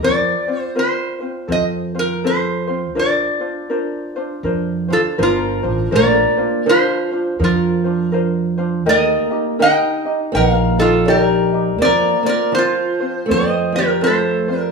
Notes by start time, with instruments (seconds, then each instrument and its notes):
0.02 upright bass F2, ukulele C4 F4 A#4 C5, resonator guitar played with a steel bar D5
0.47 ukulele C4 F4 C5
0.60 resonator guitar played with a steel bar C5
0.75 ukulele C4 F4 A#4 C5, resonator guitar played with a steel bar C5
1.20 ukulele C4 F4 C5
1.48 upright bass F2, ukulele C4 F4 A4 C5
1.52 resonator guitar played with a steel bar D#5
1.95 ukulele C4 F4 C5
1.99 resonator guitar played with a steel bar A#4
2.24 ukulele C4 F4 A4 C5, resonator guitar played with a steel bar C5
2.67 ukulele C4 F4 C5
2.95 upright bass A#1, ukulele D4 F4 A#4 C5
2.99 resonator guitar played with a steel bar D5
3.40 ukulele D4 F4 C5
3.70 ukulele D4 F4 A#4 C5
4.16 ukulele D4 F4 C5
4.43 upright bass F2, ukulele D4 F4 A#4 C5
4.88 steel-string acoustic guitar F3, ukulele D4 F4 C5
4.92 resonator guitar played with a steel bar F4 A4
5.18 upright bass G1, steel-string acoustic guitar F3, ukulele D4 F4 A#4 C5
5.23 resonator guitar played with a steel bar F4 A#4
5.63 upright bass A1, ukulele D4 F4 C5
5.91 upright bass A#1, steel-string acoustic guitar A#3, ukulele D4 F4 A#4 C5
5.95 resonator guitar played with a steel bar A#4 D5
6.37 ukulele D4 F4 C5
6.66 steel-string acoustic guitar F3, ukulele D4 F4 A#4 C5, resonator guitar played with a steel bar C5
6.70 resonator guitar played with a steel bar F4
7.11 ukulele D4 F4 C5
7.39 upright bass F2, steel-string acoustic guitar F3, ukulele D4 F4 A#4 C5
7.44 resonator guitar played with a steel bar F4 A#4
7.84 ukulele D4 F4 C5
8.12 ukulele D4 F4 A#4 C5
8.58 ukulele D4 F4 C5
8.85 upright bass D#2, steel-string acoustic guitar A#3, ukulele D#4 G4 A#4 D#5, resonator guitar played with a steel bar D#5
8.90 resonator guitar played with a steel bar A#4
9.31 ukulele D#4 G4 D#5
9.59 ukulele D#4 G4 A#4 D#5, steel-string acoustic guitar D#4, resonator guitar played with a steel bar G5
9.64 resonator guitar played with a steel bar D#5
10.05 ukulele D#4 G4 D#5
10.32 upright bass A#1, steel-string acoustic guitar B3, ukulele D#4 G4 A#4, resonator guitar played with a steel bar F#5
10.36 resonator guitar played with a steel bar A#4, ukulele D#5
10.49 steel-string acoustic guitar A#3, resonator guitar played with a steel bar F5
10.79 steel-string acoustic guitar F3, ukulele D#4 G4 D#5, resonator guitar played with a steel bar F4 A4
11.05 steel-string acoustic guitar G3, ukulele D#4 G4 A#4 D#5, resonator guitar played with a steel bar A#4
11.10 resonator guitar played with a steel bar G4
11.53 ukulele D#4 G4 D#5
11.78 upright bass F2, steel-string acoustic guitar A#3, ukulele C4 F4 A#4 C5, resonator guitar played with a steel bar D5
11.85 resonator guitar played with a steel bar A#4
12.23 steel-string acoustic guitar A#3, ukulele F4 C5, resonator guitar played with a steel bar D5
12.27 ukulele C4, resonator guitar played with a steel bar A#4
12.52 steel-string acoustic guitar F3, ukulele C4 F4 A#4 C5, resonator guitar played with a steel bar C5
12.58 resonator guitar played with a steel bar F4
13.00 ukulele C4 F4 C5
13.26 steel-string acoustic guitar C4, ukulele C4 F4 A4 C5
13.30 upright bass F2, resonator guitar played with a steel bar C5 D#5
13.72 steel-string acoustic guitar G3, ukulele C4 F4 C5, resonator guitar played with a steel bar A#4
13.78 resonator guitar played with a steel bar G4
14.01 steel-string acoustic guitar A3, ukulele C4 F4 A4 C5, resonator guitar played with a steel bar C5
14.07 resonator guitar played with a steel bar A4
14.48 ukulele C4 F4 C5
14.54 steel-string acoustic guitar G3
14.60 resonator guitar played with a steel bar A#4